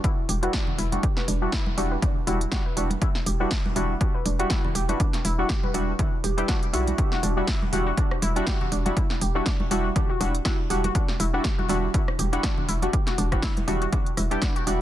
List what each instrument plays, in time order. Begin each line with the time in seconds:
0.04 synth pluck E4, kick, closed hi-hat
0.29 fm bass E1, synth pluck G4, open hi-hat, high conga
0.42 synth keys G3 D4 E4 F#4, synth pluck B4, closed hi-hat
0.53 synth pluck D4, kick, snare, closed hi-hat
0.67 low conga
0.78 fm bass E1, synth pluck E4, open hi-hat
0.92 synth keys G3 D4 E4 F#4, closed hi-hat, high conga
1.03 synth pluck G4, kick, closed hi-hat
1.17 synth pluck B4, snare
1.28 fm bass E1, synth pluck D4, open hi-hat
1.42 synth keys G3 D4 E4 F#4
1.52 synth pluck E4, kick, snare, closed hi-hat
1.66 high conga
1.77 fm bass E1, synth keys G3 D4 E4 F#4, synth pluck G4, open hi-hat
1.92 synth pluck B4
2.02 synth pluck D4, kick, closed hi-hat, low conga
2.27 fm bass E1, synth keys G3 D4 E4 F#4, synth pluck E4, open hi-hat, high conga
2.41 closed hi-hat
2.52 synth keys G3 D4 E4 F#4, synth pluck G4, kick, snare, closed hi-hat
2.66 synth pluck B4
2.76 fm bass E1, synth keys G3 D4 E4 F#4, synth pluck D4, open hi-hat
2.90 closed hi-hat, high conga
3.02 synth pluck E4, kick, closed hi-hat
3.15 snare
3.26 fm bass E1, synth pluck G4, open hi-hat
3.40 synth keys G3 D4 E4 F#4, synth pluck B4
3.51 synth pluck D4, kick, snare, closed hi-hat
3.66 high conga
3.76 fm bass E1, synth keys G3 D4 E4 F#4, synth pluck E4, open hi-hat, low conga
4.01 synth pluck G4, kick, closed hi-hat
4.15 synth pluck B4
4.26 fm bass E1, synth pluck D4, open hi-hat, high conga
4.39 synth keys G3 D4 E4 F#4, closed hi-hat
4.50 synth keys G3, synth pluck E4, kick, snare, closed hi-hat
4.65 low conga
4.75 fm bass E1, synth pluck G4, open hi-hat
4.89 synth keys G3 D4 E4 F#4, synth pluck B4, closed hi-hat, high conga
5.00 synth pluck D4, kick, closed hi-hat
5.13 snare, closed hi-hat
5.25 fm bass E1, synth pluck E4, open hi-hat
5.38 synth keys G3 D4 E4 F#4
5.49 synth pluck G4, kick, snare, closed hi-hat
5.63 synth pluck B4, high conga
5.74 fm bass E1, synth keys G3 D4 E4 F#4, synth pluck D4, open hi-hat
5.99 synth pluck E4, kick, closed hi-hat, low conga
6.24 fm bass E1, synth pluck G4, open hi-hat, high conga
6.37 synth keys G3 D4 E4 G4, synth pluck B4, closed hi-hat
6.48 synth keys G3 D4 F#4, synth pluck D4, kick, snare, closed hi-hat
6.63 closed hi-hat
6.73 fm bass B1, synth keys G3 D4 E4 F#4, synth pluck E4, open hi-hat
6.87 closed hi-hat, high conga
6.98 synth pluck G4, kick, closed hi-hat
7.12 synth pluck F#4, snare
7.23 fm bass E1, synth pluck D4, open hi-hat
7.37 synth keys G3 D4 E4 F#4
7.47 synth pluck E4, kick, snare, closed hi-hat
7.62 high conga
7.72 fm bass E1, synth keys G3 D4 E4 F#4, synth pluck G4, open hi-hat, low conga
7.87 synth pluck F#4
7.97 synth pluck D4, kick, closed hi-hat
8.11 cross-stick
8.22 fm bass E1, synth pluck E4, open hi-hat, high conga
8.36 synth keys G3 D4 E4 F#4, closed hi-hat
8.47 synth pluck G4, kick, snare, closed hi-hat
8.61 synth pluck F#4, low conga
8.72 fm bass E1, synth pluck D4, open hi-hat
8.85 synth keys G3 D4 E4 F#4, closed hi-hat, high conga
8.97 synth pluck E4, kick, closed hi-hat
9.10 snare
9.21 fm bass E1, synth pluck G4, open hi-hat
9.35 synth keys G3 D4 E4 F#4, synth pluck F#4
9.46 synth pluck D4, kick, snare, closed hi-hat
9.60 high conga
9.71 fm bass E1, synth keys G3 D4 E4 F#4, synth pluck E4, open hi-hat
9.96 synth pluck G4, kick, closed hi-hat, low conga
10.10 synth pluck F#4
10.20 fm bass E1, synth keys G3 D4 E4 F#4, synth pluck D4, open hi-hat, high conga
10.35 closed hi-hat
10.45 synth keys G3 D4 E4 F#4, synth pluck E4, kick, snare, closed hi-hat
10.70 fm bass E1, synth keys G3 D4 E4 F#4, synth pluck G4, open hi-hat
10.84 synth pluck F#4, closed hi-hat, high conga
10.95 synth pluck D4, kick, closed hi-hat
11.08 snare
11.20 fm bass E1, synth pluck E4, open hi-hat
11.33 synth keys G3 D4 E4 F#4
11.44 synth pluck G4, kick, snare, closed hi-hat
11.58 synth pluck F#4, high conga
11.69 fm bass E1, synth keys G3 D4 E4 F#4, synth pluck D4, open hi-hat, low conga
11.94 synth pluck E4, kick, closed hi-hat
12.08 cross-stick
12.19 fm bass E1, synth pluck G4, open hi-hat, high conga
12.33 synth keys G3 D4 E4 F#4, synth pluck F#4, closed hi-hat
12.43 synth keys G3, synth pluck D4, kick, snare, closed hi-hat
12.58 low conga
12.69 fm bass E1, synth pluck E4, open hi-hat
12.82 synth keys G3 D4 E4 F#4, closed hi-hat, high conga
12.93 synth pluck G4, kick, closed hi-hat
13.07 synth pluck F#4, snare, closed hi-hat
13.18 fm bass E1, synth pluck D4, open hi-hat
13.32 synth keys G3 D4 E4 F#4, kick, cross-stick, closed hi-hat
13.42 synth pluck E4, kick, snare, closed hi-hat
13.57 closed hi-hat, high conga
13.67 fm bass E1, synth keys G3 D4 E4 F#4, synth pluck G4, open hi-hat, low conga
13.82 synth pluck F#4, closed hi-hat
13.93 synth pluck D4, kick, closed hi-hat, low conga
14.06 closed hi-hat
14.17 fm bass E1, synth pluck E4, cross-stick, open hi-hat, high conga
14.31 synth keys G3 D4 E4 G4, synth pluck B4, closed hi-hat
14.42 synth pluck D4, kick, snare, closed hi-hat
14.56 synth pluck F#4, closed hi-hat
14.66 fm bass E1, synth keys G3 D4 E4 F#4, synth pluck G4, open hi-hat